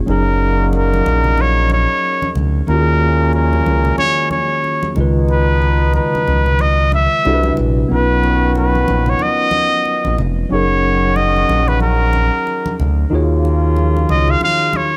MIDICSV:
0, 0, Header, 1, 6, 480
1, 0, Start_track
1, 0, Tempo, 652174
1, 54, Time_signature, 4, 2, 24, 8
1, 11017, End_track
2, 0, Start_track
2, 0, Title_t, "Muted trumpet"
2, 0, Program_c, 0, 59
2, 70, Note_on_c, 0, 70, 82
2, 512, Note_off_c, 0, 70, 0
2, 556, Note_on_c, 0, 70, 94
2, 1038, Note_on_c, 0, 73, 123
2, 1049, Note_off_c, 0, 70, 0
2, 1266, Note_off_c, 0, 73, 0
2, 1271, Note_on_c, 0, 73, 101
2, 1713, Note_off_c, 0, 73, 0
2, 1983, Note_on_c, 0, 70, 96
2, 2429, Note_off_c, 0, 70, 0
2, 2458, Note_on_c, 0, 70, 84
2, 2906, Note_off_c, 0, 70, 0
2, 2932, Note_on_c, 0, 73, 125
2, 3156, Note_off_c, 0, 73, 0
2, 3173, Note_on_c, 0, 73, 96
2, 3624, Note_off_c, 0, 73, 0
2, 3909, Note_on_c, 0, 71, 89
2, 4352, Note_off_c, 0, 71, 0
2, 4382, Note_on_c, 0, 71, 93
2, 4865, Note_on_c, 0, 75, 124
2, 4876, Note_off_c, 0, 71, 0
2, 5099, Note_off_c, 0, 75, 0
2, 5110, Note_on_c, 0, 76, 102
2, 5552, Note_off_c, 0, 76, 0
2, 5838, Note_on_c, 0, 71, 93
2, 6276, Note_off_c, 0, 71, 0
2, 6310, Note_on_c, 0, 71, 79
2, 6693, Note_on_c, 0, 73, 95
2, 6704, Note_off_c, 0, 71, 0
2, 6788, Note_on_c, 0, 75, 114
2, 6799, Note_off_c, 0, 73, 0
2, 7501, Note_off_c, 0, 75, 0
2, 7745, Note_on_c, 0, 73, 100
2, 8215, Note_on_c, 0, 75, 95
2, 8226, Note_off_c, 0, 73, 0
2, 8597, Note_on_c, 0, 71, 88
2, 8608, Note_off_c, 0, 75, 0
2, 8693, Note_off_c, 0, 71, 0
2, 8696, Note_on_c, 0, 70, 92
2, 9385, Note_off_c, 0, 70, 0
2, 10383, Note_on_c, 0, 75, 101
2, 10528, Note_on_c, 0, 77, 98
2, 10539, Note_off_c, 0, 75, 0
2, 10618, Note_off_c, 0, 77, 0
2, 10626, Note_on_c, 0, 77, 111
2, 10865, Note_on_c, 0, 73, 93
2, 10876, Note_off_c, 0, 77, 0
2, 11017, Note_off_c, 0, 73, 0
2, 11017, End_track
3, 0, Start_track
3, 0, Title_t, "Tine electric piano"
3, 0, Program_c, 1, 4
3, 0, Control_c, 1, 64, 127
3, 45, Note_on_c, 1, 54, 66
3, 55, Note_on_c, 1, 61, 56
3, 63, Control_c, 1, 64, 0
3, 64, Note_on_c, 1, 63, 64
3, 76, Note_on_c, 1, 68, 60
3, 84, Note_on_c, 1, 70, 73
3, 175, Control_c, 1, 64, 127
3, 1940, Note_off_c, 1, 54, 0
3, 1945, Note_off_c, 1, 61, 0
3, 1949, Note_off_c, 1, 63, 0
3, 1955, Note_off_c, 1, 68, 0
3, 1959, Note_off_c, 1, 70, 0
3, 1964, Note_on_c, 1, 51, 69
3, 1974, Note_on_c, 1, 58, 66
3, 1983, Control_c, 1, 64, 0
3, 1984, Note_on_c, 1, 61, 63
3, 1990, Note_on_c, 1, 65, 61
3, 1998, Note_on_c, 1, 66, 55
3, 2009, Note_on_c, 1, 67, 63
3, 2049, Note_off_c, 1, 67, 0
3, 2054, Note_on_c, 1, 68, 73
3, 2131, Control_c, 1, 64, 127
3, 3619, Note_off_c, 1, 51, 0
3, 3624, Note_off_c, 1, 58, 0
3, 3629, Note_off_c, 1, 61, 0
3, 3632, Note_off_c, 1, 65, 0
3, 3636, Note_off_c, 1, 66, 0
3, 3641, Note_on_c, 1, 49, 61
3, 3653, Note_on_c, 1, 56, 59
3, 3659, Note_on_c, 1, 51, 55
3, 3663, Control_c, 1, 64, 0
3, 3664, Note_off_c, 1, 68, 0
3, 3673, Note_on_c, 1, 65, 57
3, 3684, Note_on_c, 1, 71, 74
3, 3777, Control_c, 1, 64, 127
3, 5298, Note_off_c, 1, 49, 0
3, 5304, Note_off_c, 1, 56, 0
3, 5307, Note_off_c, 1, 51, 0
3, 5314, Note_off_c, 1, 65, 0
3, 5319, Note_off_c, 1, 71, 0
3, 5336, Note_on_c, 1, 48, 77
3, 5340, Note_on_c, 1, 55, 66
3, 5341, Note_on_c, 1, 62, 60
3, 5344, Control_c, 1, 64, 0
3, 5349, Note_on_c, 1, 64, 62
3, 5350, Note_on_c, 1, 66, 62
3, 5357, Note_on_c, 1, 69, 61
3, 5403, Note_off_c, 1, 69, 0
3, 5405, Note_on_c, 1, 71, 78
3, 5483, Control_c, 1, 64, 127
3, 5802, Note_on_c, 1, 59, 65
3, 5811, Note_on_c, 1, 54, 57
3, 5815, Note_off_c, 1, 48, 0
3, 5817, Note_off_c, 1, 55, 0
3, 5817, Note_off_c, 1, 62, 0
3, 5818, Note_on_c, 1, 61, 60
3, 5821, Note_off_c, 1, 64, 0
3, 5822, Note_off_c, 1, 66, 0
3, 5825, Control_c, 1, 64, 0
3, 5829, Note_on_c, 1, 63, 62
3, 5835, Note_off_c, 1, 71, 0
3, 5836, Note_on_c, 1, 65, 58
3, 5844, Note_on_c, 1, 71, 70
3, 5964, Control_c, 1, 64, 127
3, 7698, Note_off_c, 1, 59, 0
3, 7703, Note_off_c, 1, 54, 0
3, 7706, Note_off_c, 1, 61, 0
3, 7712, Note_off_c, 1, 63, 0
3, 7715, Note_off_c, 1, 65, 0
3, 7719, Note_off_c, 1, 71, 0
3, 7723, Note_on_c, 1, 54, 61
3, 7732, Note_on_c, 1, 61, 63
3, 7743, Note_on_c, 1, 63, 57
3, 7744, Control_c, 1, 64, 0
3, 7754, Note_on_c, 1, 68, 57
3, 7765, Note_on_c, 1, 70, 65
3, 7881, Control_c, 1, 64, 127
3, 9619, Note_off_c, 1, 54, 0
3, 9623, Note_off_c, 1, 61, 0
3, 9629, Note_off_c, 1, 63, 0
3, 9634, Note_off_c, 1, 68, 0
3, 9640, Note_off_c, 1, 70, 0
3, 9640, Note_on_c, 1, 51, 77
3, 9646, Note_on_c, 1, 63, 76
3, 9655, Note_on_c, 1, 65, 67
3, 9663, Control_c, 1, 64, 0
3, 9664, Note_on_c, 1, 66, 71
3, 9673, Note_on_c, 1, 68, 73
3, 9679, Note_on_c, 1, 73, 83
3, 9771, Control_c, 1, 64, 127
3, 11017, Note_off_c, 1, 51, 0
3, 11017, Note_off_c, 1, 63, 0
3, 11017, Note_off_c, 1, 65, 0
3, 11017, Note_off_c, 1, 66, 0
3, 11017, Note_off_c, 1, 68, 0
3, 11017, Note_off_c, 1, 73, 0
3, 11017, End_track
4, 0, Start_track
4, 0, Title_t, "Trombone section"
4, 0, Program_c, 2, 61
4, 55, Note_on_c, 2, 63, 80
4, 56, Note_on_c, 2, 46, 74
4, 56, Note_on_c, 2, 54, 78
4, 1705, Note_off_c, 2, 46, 0
4, 1705, Note_off_c, 2, 54, 0
4, 1705, Note_off_c, 2, 63, 0
4, 1974, Note_on_c, 2, 46, 82
4, 1974, Note_on_c, 2, 61, 85
4, 1975, Note_on_c, 2, 56, 77
4, 3385, Note_off_c, 2, 46, 0
4, 3385, Note_off_c, 2, 56, 0
4, 3385, Note_off_c, 2, 61, 0
4, 3651, Note_on_c, 2, 56, 77
4, 3652, Note_on_c, 2, 63, 84
4, 3653, Note_on_c, 2, 47, 69
4, 5064, Note_off_c, 2, 47, 0
4, 5064, Note_off_c, 2, 56, 0
4, 5064, Note_off_c, 2, 63, 0
4, 5330, Note_on_c, 2, 55, 64
4, 5331, Note_on_c, 2, 47, 64
4, 5331, Note_on_c, 2, 64, 73
4, 5567, Note_off_c, 2, 47, 0
4, 5567, Note_off_c, 2, 55, 0
4, 5567, Note_off_c, 2, 64, 0
4, 5810, Note_on_c, 2, 51, 71
4, 5810, Note_on_c, 2, 61, 79
4, 5811, Note_on_c, 2, 66, 88
4, 7462, Note_off_c, 2, 51, 0
4, 7462, Note_off_c, 2, 61, 0
4, 7463, Note_off_c, 2, 66, 0
4, 7733, Note_on_c, 2, 51, 77
4, 7734, Note_on_c, 2, 66, 89
4, 7735, Note_on_c, 2, 61, 79
4, 9384, Note_off_c, 2, 51, 0
4, 9385, Note_off_c, 2, 61, 0
4, 9385, Note_off_c, 2, 66, 0
4, 9648, Note_on_c, 2, 58, 76
4, 9648, Note_on_c, 2, 65, 83
4, 9649, Note_on_c, 2, 49, 78
4, 11017, Note_off_c, 2, 49, 0
4, 11017, Note_off_c, 2, 58, 0
4, 11017, Note_off_c, 2, 65, 0
4, 11017, End_track
5, 0, Start_track
5, 0, Title_t, "Analog synth bass"
5, 0, Program_c, 3, 38
5, 64, Note_on_c, 3, 30, 120
5, 749, Note_off_c, 3, 30, 0
5, 784, Note_on_c, 3, 34, 91
5, 1374, Note_off_c, 3, 34, 0
5, 1740, Note_on_c, 3, 38, 85
5, 1926, Note_off_c, 3, 38, 0
5, 1978, Note_on_c, 3, 39, 105
5, 2666, Note_off_c, 3, 39, 0
5, 2700, Note_on_c, 3, 37, 100
5, 2887, Note_off_c, 3, 37, 0
5, 3660, Note_on_c, 3, 37, 98
5, 4415, Note_off_c, 3, 37, 0
5, 4625, Note_on_c, 3, 37, 85
5, 5215, Note_off_c, 3, 37, 0
5, 5344, Note_on_c, 3, 36, 110
5, 5529, Note_off_c, 3, 36, 0
5, 5588, Note_on_c, 3, 34, 98
5, 5771, Note_off_c, 3, 34, 0
5, 5826, Note_on_c, 3, 35, 100
5, 6510, Note_off_c, 3, 35, 0
5, 6549, Note_on_c, 3, 34, 102
5, 6732, Note_off_c, 3, 34, 0
5, 7407, Note_on_c, 3, 34, 81
5, 7479, Note_off_c, 3, 34, 0
5, 7506, Note_on_c, 3, 29, 85
5, 7690, Note_off_c, 3, 29, 0
5, 7743, Note_on_c, 3, 30, 97
5, 8429, Note_off_c, 3, 30, 0
5, 8463, Note_on_c, 3, 34, 102
5, 9054, Note_off_c, 3, 34, 0
5, 9424, Note_on_c, 3, 38, 92
5, 9609, Note_off_c, 3, 38, 0
5, 9661, Note_on_c, 3, 39, 106
5, 10348, Note_off_c, 3, 39, 0
5, 10381, Note_on_c, 3, 37, 91
5, 10567, Note_off_c, 3, 37, 0
5, 11017, End_track
6, 0, Start_track
6, 0, Title_t, "Drums"
6, 59, Note_on_c, 9, 62, 29
6, 133, Note_off_c, 9, 62, 0
6, 536, Note_on_c, 9, 62, 29
6, 536, Note_on_c, 9, 63, 42
6, 609, Note_off_c, 9, 62, 0
6, 609, Note_off_c, 9, 63, 0
6, 689, Note_on_c, 9, 63, 58
6, 762, Note_off_c, 9, 63, 0
6, 782, Note_on_c, 9, 62, 36
6, 782, Note_on_c, 9, 63, 75
6, 855, Note_off_c, 9, 62, 0
6, 855, Note_off_c, 9, 63, 0
6, 914, Note_on_c, 9, 64, 56
6, 988, Note_off_c, 9, 64, 0
6, 1012, Note_on_c, 9, 62, 29
6, 1012, Note_on_c, 9, 63, 67
6, 1086, Note_off_c, 9, 62, 0
6, 1086, Note_off_c, 9, 63, 0
6, 1249, Note_on_c, 9, 63, 73
6, 1322, Note_off_c, 9, 63, 0
6, 1636, Note_on_c, 9, 63, 74
6, 1710, Note_off_c, 9, 63, 0
6, 1733, Note_on_c, 9, 62, 34
6, 1733, Note_on_c, 9, 64, 67
6, 1806, Note_off_c, 9, 62, 0
6, 1806, Note_off_c, 9, 64, 0
6, 1972, Note_on_c, 9, 62, 28
6, 2045, Note_off_c, 9, 62, 0
6, 2450, Note_on_c, 9, 63, 47
6, 2524, Note_off_c, 9, 63, 0
6, 2598, Note_on_c, 9, 63, 65
6, 2672, Note_off_c, 9, 63, 0
6, 2696, Note_on_c, 9, 62, 33
6, 2696, Note_on_c, 9, 63, 72
6, 2770, Note_off_c, 9, 62, 0
6, 2770, Note_off_c, 9, 63, 0
6, 2832, Note_on_c, 9, 64, 65
6, 2905, Note_off_c, 9, 64, 0
6, 2930, Note_on_c, 9, 62, 29
6, 2930, Note_on_c, 9, 63, 66
6, 3003, Note_off_c, 9, 62, 0
6, 3003, Note_off_c, 9, 63, 0
6, 3169, Note_on_c, 9, 62, 32
6, 3169, Note_on_c, 9, 63, 73
6, 3243, Note_off_c, 9, 62, 0
6, 3243, Note_off_c, 9, 63, 0
6, 3416, Note_on_c, 9, 62, 27
6, 3489, Note_off_c, 9, 62, 0
6, 3552, Note_on_c, 9, 63, 77
6, 3626, Note_off_c, 9, 63, 0
6, 3649, Note_on_c, 9, 64, 74
6, 3722, Note_off_c, 9, 64, 0
6, 3889, Note_on_c, 9, 62, 29
6, 3963, Note_off_c, 9, 62, 0
6, 4134, Note_on_c, 9, 62, 27
6, 4208, Note_off_c, 9, 62, 0
6, 4368, Note_on_c, 9, 62, 32
6, 4368, Note_on_c, 9, 63, 44
6, 4442, Note_off_c, 9, 62, 0
6, 4442, Note_off_c, 9, 63, 0
6, 4527, Note_on_c, 9, 63, 57
6, 4600, Note_off_c, 9, 63, 0
6, 4619, Note_on_c, 9, 63, 74
6, 4692, Note_off_c, 9, 63, 0
6, 4755, Note_on_c, 9, 64, 65
6, 4829, Note_off_c, 9, 64, 0
6, 4850, Note_on_c, 9, 62, 33
6, 4850, Note_on_c, 9, 63, 68
6, 4924, Note_off_c, 9, 62, 0
6, 4924, Note_off_c, 9, 63, 0
6, 5093, Note_on_c, 9, 63, 70
6, 5166, Note_off_c, 9, 63, 0
6, 5338, Note_on_c, 9, 62, 25
6, 5412, Note_off_c, 9, 62, 0
6, 5472, Note_on_c, 9, 63, 77
6, 5545, Note_off_c, 9, 63, 0
6, 5572, Note_on_c, 9, 62, 34
6, 5572, Note_on_c, 9, 64, 71
6, 5645, Note_off_c, 9, 62, 0
6, 5645, Note_off_c, 9, 64, 0
6, 6060, Note_on_c, 9, 62, 27
6, 6134, Note_off_c, 9, 62, 0
6, 6295, Note_on_c, 9, 62, 27
6, 6295, Note_on_c, 9, 63, 47
6, 6369, Note_off_c, 9, 62, 0
6, 6369, Note_off_c, 9, 63, 0
6, 6441, Note_on_c, 9, 63, 59
6, 6515, Note_off_c, 9, 63, 0
6, 6535, Note_on_c, 9, 62, 37
6, 6535, Note_on_c, 9, 63, 78
6, 6609, Note_off_c, 9, 62, 0
6, 6609, Note_off_c, 9, 63, 0
6, 6669, Note_on_c, 9, 64, 61
6, 6742, Note_off_c, 9, 64, 0
6, 6765, Note_on_c, 9, 62, 30
6, 6765, Note_on_c, 9, 63, 66
6, 6839, Note_off_c, 9, 62, 0
6, 6839, Note_off_c, 9, 63, 0
6, 7001, Note_on_c, 9, 63, 77
6, 7074, Note_off_c, 9, 63, 0
6, 7251, Note_on_c, 9, 62, 25
6, 7325, Note_off_c, 9, 62, 0
6, 7395, Note_on_c, 9, 63, 72
6, 7468, Note_off_c, 9, 63, 0
6, 7496, Note_on_c, 9, 62, 33
6, 7496, Note_on_c, 9, 64, 72
6, 7569, Note_off_c, 9, 62, 0
6, 7569, Note_off_c, 9, 64, 0
6, 8213, Note_on_c, 9, 62, 28
6, 8213, Note_on_c, 9, 63, 44
6, 8287, Note_off_c, 9, 62, 0
6, 8287, Note_off_c, 9, 63, 0
6, 8365, Note_on_c, 9, 63, 55
6, 8438, Note_off_c, 9, 63, 0
6, 8459, Note_on_c, 9, 62, 36
6, 8459, Note_on_c, 9, 63, 71
6, 8533, Note_off_c, 9, 62, 0
6, 8533, Note_off_c, 9, 63, 0
6, 8595, Note_on_c, 9, 64, 62
6, 8669, Note_off_c, 9, 64, 0
6, 8688, Note_on_c, 9, 63, 65
6, 8761, Note_off_c, 9, 63, 0
6, 8928, Note_on_c, 9, 62, 31
6, 8928, Note_on_c, 9, 63, 74
6, 9001, Note_off_c, 9, 62, 0
6, 9001, Note_off_c, 9, 63, 0
6, 9177, Note_on_c, 9, 62, 26
6, 9251, Note_off_c, 9, 62, 0
6, 9316, Note_on_c, 9, 63, 81
6, 9389, Note_off_c, 9, 63, 0
6, 9418, Note_on_c, 9, 62, 34
6, 9418, Note_on_c, 9, 64, 68
6, 9491, Note_off_c, 9, 62, 0
6, 9491, Note_off_c, 9, 64, 0
6, 9899, Note_on_c, 9, 62, 28
6, 9972, Note_off_c, 9, 62, 0
6, 10131, Note_on_c, 9, 62, 32
6, 10131, Note_on_c, 9, 63, 47
6, 10204, Note_off_c, 9, 62, 0
6, 10204, Note_off_c, 9, 63, 0
6, 10279, Note_on_c, 9, 63, 59
6, 10353, Note_off_c, 9, 63, 0
6, 10371, Note_on_c, 9, 62, 35
6, 10371, Note_on_c, 9, 63, 72
6, 10445, Note_off_c, 9, 62, 0
6, 10445, Note_off_c, 9, 63, 0
6, 10507, Note_on_c, 9, 64, 61
6, 10581, Note_off_c, 9, 64, 0
6, 10605, Note_on_c, 9, 62, 29
6, 10605, Note_on_c, 9, 63, 67
6, 10678, Note_off_c, 9, 62, 0
6, 10678, Note_off_c, 9, 63, 0
6, 10843, Note_on_c, 9, 62, 33
6, 10843, Note_on_c, 9, 63, 74
6, 10916, Note_off_c, 9, 62, 0
6, 10916, Note_off_c, 9, 63, 0
6, 11017, End_track
0, 0, End_of_file